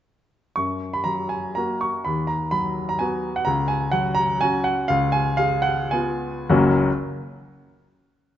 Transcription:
0.56 2.03 F#2 soft
0.56 0.94 C#6 medium
0.93 1.07 B5 medium
1.04 1.87 F#3 soft
1.04 1.31 A#5 medium
1.29 1.56 G#5 medium
1.55 2.02 A#3 soft
1.55 2.03 F#4 soft
1.55 1.81 A#5 medium
1.81 2.06 C#6 medium
2.05 3.44 D#2 soft
2.05 2.30 B5 medium
2.27 2.53 A#5 medium
2.51 3.29 F#3 soft
2.51 2.89 B5 medium
2.89 3.02 A#5 medium
2.99 3.43 B3 soft
2.99 3.44 F#4 soft
2.99 3.36 G#5 medium
3.36 3.48 F#5 medium
3.45 4.85 C#2 medium
3.45 3.69 A#5 medium
3.68 3.93 G#5 medium
3.92 4.71 F#3 soft
3.92 4.17 F#5 medium
4.15 4.41 A#5 medium
4.41 4.86 C#4 soft
4.41 4.86 F#4 medium
4.41 4.66 G#5 medium
4.64 4.89 F#5 medium
4.88 6.46 C#2 medium
4.88 5.13 F5 medium
5.12 5.38 G#5 medium
5.37 6.29 G#3 medium
5.37 5.64 F5 medium
5.62 5.91 F#5 medium
5.91 6.46 B3 soft
5.91 6.47 F4 soft
5.91 6.50 G#5 medium
6.49 6.79 F#1 medium
6.49 6.79 C#2 medium
6.49 6.79 F#3 medium
6.49 6.79 A#3 medium
6.49 6.79 C#4 medium
6.49 6.80 F#4 medium
6.49 6.79 F#5 medium

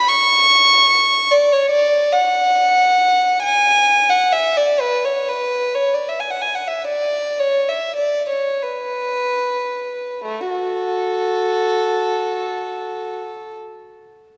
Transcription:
0.08 1.30 C#6 loud
1.31 1.52 D5 medium
1.52 1.73 C#5 medium
1.71 2.12 D5 medium
2.13 3.43 F#5 medium
3.42 4.08 G#5 medium
4.09 4.32 F#5 medium
4.32 4.56 E5 medium
4.57 4.80 D5 medium
4.80 5.04 B4 medium
5.05 5.29 C#5 medium
5.29 5.74 B4 medium
5.75 5.94 C#5 medium
5.94 6.09 D5 medium
6.09 6.21 E5 medium
6.20 6.31 G#5 soft
6.30 6.41 F#5 medium
6.42 6.54 G#5 medium
6.55 6.69 F#5 soft
6.68 6.83 E5 medium
6.84 7.39 D5 medium
7.39 7.68 C#5 medium
7.69 7.98 E5 medium
7.96 8.27 D5 medium
8.30 8.61 C#5 medium
8.62 10.27 B4 medium
10.25 10.50 A3 medium
10.50 13.16 F#4 soft
10.50 13.55 A4 medium

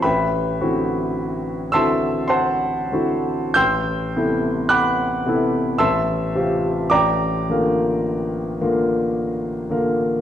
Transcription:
0.02 0.60 A1 medium
0.02 1.15 B4 medium
0.02 1.15 E5 medium
0.02 1.14 G5 medium
0.02 1.18 B5 medium
0.61 1.71 D3 soft
0.61 1.71 C4 soft
0.61 1.71 E4 soft
0.61 1.71 F#4 medium
1.72 2.89 D3 soft
1.72 2.89 C4 soft
1.72 2.89 E4 soft
1.72 2.89 F#4 soft
1.72 2.27 E5 medium
1.72 2.28 A5 medium
1.72 2.26 C6 medium
1.72 2.31 E6 loud
2.28 3.51 C5 medium
2.28 3.52 F#5 medium
2.28 3.51 A5 medium
2.28 3.54 C6 medium
2.92 3.52 D3 soft
2.92 3.53 C4 soft
2.92 3.53 E4 soft
2.92 3.53 F#4 medium
3.54 4.13 A1 medium
3.54 4.67 G5 medium
3.54 4.67 C6 medium
3.54 4.67 E6 medium
3.54 4.70 G6 loud
4.16 5.22 C3 soft
4.16 5.22 B3 soft
4.16 5.22 E4 soft
4.16 5.22 A4 soft
4.69 5.75 F#5 medium
4.69 5.75 B5 medium
4.69 5.75 D6 medium
4.69 5.79 F#6 medium
5.26 5.76 C3 soft
5.26 5.77 B3 soft
5.26 5.77 E4 soft
5.26 5.77 A4 soft
5.78 6.33 A1 medium
5.78 6.87 E5 medium
5.78 6.87 A5 medium
5.78 6.86 C6 medium
5.78 6.90 E6 medium
6.35 6.87 C3 soft
6.35 6.87 C4 soft
6.35 6.88 F4 soft
6.35 6.88 G4 medium
6.90 7.46 A1 medium
6.90 8.01 D5 medium
6.90 8.01 G5 medium
6.90 8.01 A#5 medium
6.90 8.04 D6 medium
7.50 8.56 D3 soft
7.50 8.56 A#3 soft
7.50 8.57 F4 soft
7.50 8.57 A#4 soft
8.61 9.65 D3 soft
8.61 9.66 A#3 soft
8.61 9.65 F4 soft
8.61 9.66 A#4 medium
9.70 10.21 D3 soft
9.70 10.21 A#3 soft
9.70 10.21 F4 soft
9.70 10.21 A#4 medium

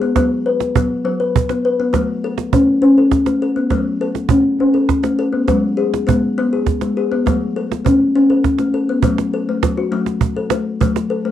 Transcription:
0.01 0.15 B3 medium
0.01 cajon slap soft
0.16 0.65 F#3 medium
0.16 0.46 B3 medium
0.16 cajon bass medium
0.16 cajon slap soft
0.46 0.75 B4 medium
0.60 cajon slap soft
0.75 1.00 F#3 medium
0.75 1.05 B3 medium
0.75 cajon bass medium
1.05 1.78 F#3 medium
1.20 1.49 B4 medium
1.20 cajon slap soft
1.36 cajon bass medium
1.49 1.64 B3 medium
1.49 cajon slap soft
1.65 1.79 B4 medium
1.79 1.94 B3 medium
1.79 cajon slap soft
1.93 2.42 F#3 medium
1.93 2.24 A3 medium
1.93 cajon bass medium
1.93 cajon slap soft
2.24 2.53 A4 medium
2.38 cajon slap soft
2.53 2.83 A3 medium
2.53 2.78 C#4 medium
2.53 cajon bass medium
2.82 3.56 C#4 medium
2.82 cajon slap soft
2.98 3.27 A4 medium
3.12 cajon bass medium
3.12 cajon slap soft
3.26 3.41 A3 medium
3.26 cajon slap soft
3.42 3.57 A4 medium
3.56 3.71 B3 medium
3.56 cajon slap soft
3.70 4.20 F#3 medium
3.70 4.01 A3 medium
3.70 cajon bass soft
3.70 cajon slap soft
4.01 4.31 A4 medium
4.15 cajon slap soft
4.29 4.60 A3 medium
4.29 4.55 C#4 medium
4.29 cajon bass medium
4.59 5.34 C#4 medium
4.59 cajon slap soft
4.74 5.04 A4 medium
4.89 cajon bass medium
4.89 cajon slap soft
5.03 5.19 A3 medium
5.03 cajon slap soft
5.19 5.34 A4 medium
5.33 5.48 B3 medium
5.33 cajon slap soft
5.48 5.97 F#3 medium
5.48 5.78 G#3 medium
5.48 cajon bass medium
5.48 cajon slap soft
5.77 6.07 G#4 medium
5.94 cajon slap soft
6.07 6.37 G#3 medium
6.07 6.32 B3 medium
6.07 cajon bass medium
6.38 7.10 B3 medium
6.38 cajon slap soft
6.53 6.82 G#4 medium
6.67 cajon bass soft
6.67 cajon slap soft
6.81 6.97 G#3 medium
6.81 cajon slap soft
6.97 7.12 G#4 medium
7.12 7.26 B3 medium
7.12 cajon slap soft
7.26 7.76 F#3 medium
7.26 7.56 A3 medium
7.26 cajon bass medium
7.26 cajon slap soft
7.56 7.86 A4 medium
7.71 cajon slap soft
7.85 8.15 A3 medium
7.85 8.10 C#4 medium
7.85 cajon bass medium
8.00 cajon slap soft
8.15 8.89 C#4 medium
8.30 8.59 A4 medium
8.44 cajon bass soft
8.44 cajon slap soft
8.58 8.74 A3 medium
8.58 cajon slap soft
8.73 8.89 A4 medium
8.73 cajon slap soft
8.89 9.04 B3 medium
9.02 9.53 F#3 medium
9.02 9.33 A3 medium
9.02 cajon bass medium
9.18 cajon slap soft
9.33 9.48 A4 medium
9.49 9.78 A3 medium
9.63 9.75 F#3 medium
9.63 cajon bass soft
9.63 cajon slap soft
9.77 9.92 F#4 medium
9.77 cajon slap soft
9.92 10.66 F#3 medium
9.92 10.22 A3 medium
10.06 cajon slap soft
10.21 cajon bass medium
10.36 10.51 A4 medium
10.36 cajon slap soft
10.50 10.80 A3 medium
10.50 cajon slap soft
10.81 11.30 F#3 medium
10.81 11.11 A3 medium
10.81 cajon bass medium
10.96 cajon slap soft
11.10 11.25 A4 medium
11.25 11.31 A3 medium

